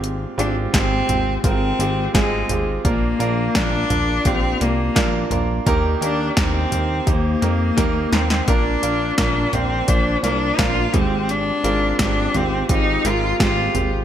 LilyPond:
<<
  \new Staff \with { instrumentName = "Grand piano" } { \time 4/4 \key f \dorian \tempo 4 = 85 <aes c' f' g'>8 <aes c' f' g'>8 <aes c' f' g'>8 <aes c' f' g'>8 <aes c' f' bes'>8 <aes c' f' g'>8 <aes c' f' aes'>8 <aes c' f' g'>8 | <bes d' f' bes'>8 <bes d' f' bes'>8 <bes d' f' bes'>8 <bes d' f' bes'>8 <bes d' f' g'>8 <bes d' f' bes'>8 <bes d' f' bes'>8 <bes d' f' bes'>8 | <bes ees' g' bes'>8 <bes g' bes'>8 <bes ees' g' bes'>8 <bes ees' g' bes'>8 <bes ees' g' c''>8 <bes ees' g' bes'>8 <bes ees' g' bes'>8 <bes ees' g' bes'>8 | <bes d' f' bes'>8 <bes d' f' bes'>8 <bes d' f' bes'>8 <bes d' f' bes'>8 <bes d' f' c''>8 <bes d' f' bes'>8 <bes d' f' bes'>8 <aes c' f' g'>8~ |
<aes c' f' g'>8 <aes c' f' bes'>8 <aes c' f' g'>8 <aes c' f' g'>8 <aes c' f' g'>8 <aes c' f' bes'>8 <aes c' f' g'>8 <aes c' f' g'>8 | }
  \new Staff \with { instrumentName = "Grand piano" } { \clef bass \time 4/4 \key f \dorian aes,4 r2. | bes,4. r2 r8 | ees4. r2 r8 | bes,4. r2 aes,8~ |
aes,4 r2. | }
  \new Staff \with { instrumentName = "Cello" } { \time 4/4 \key f \dorian r8 d'8 c'4 c'4 aes8. r16 | bes4 d'4 c'8 bes4 r8 | r8 d'8 c'4 bes4. c'8 | d'4 d'8 c'8 d'8 d'8 f'8 c'8 |
d'4 d'8 c'8 ees'8 f'8 f'8. r16 | }
  \new Staff \with { instrumentName = "Analog synth bass" } { \clef bass \time 4/4 \key f \dorian aes,,8 aes,,8 aes,,8 aes,,8 aes,,8 aes,,8 aes,,8 aes,,8 | bes,,8 bes,,8 bes,,8 bes,,8 bes,,8 c,8 bes,,8 bes,,8 | ees,8 ees,8 ees,8 ees,8 ees,8 f,8 ees,8 ees,8 | bes,,8 bes,,8 bes,,8 bes,,8 bes,,8 c,8 bes,,8 aes,,8~ |
aes,,8 aes,,8 aes,,8 aes,,8 aes,,8 aes,,8 aes,,8 aes,,8 | }
  \new DrumStaff \with { instrumentName = "Drums" } \drummode { \time 4/4 hh8 hh8 <hh bd sn>8 <hh tomfh>8 <hh bd>8 <hh sn>8 <hh bd sn>8 <hh tomfh>8 | <hh bd>8 hh8 <hh bd sn>8 <hh tomfh>8 <hh bd>8 <hh sn>8 <hh bd sn>8 <hh tomfh>8 | <hh bd>8 hh8 <hh bd sn>8 <hh tomfh>8 <hh bd>8 <hh sn>8 <hh bd sn>8 <hh sn>16 sn16 | <hh bd>8 hh8 <hh bd sn>8 <hh tomfh>8 <hh bd>8 <hh sn>8 <hh bd sn>8 <hh bd tomfh>8 |
hh8 hh8 <hh bd sn>8 <hh tomfh>8 <hh bd>8 <hh sn>8 <hh bd sn>8 <hh tomfh>8 | }
>>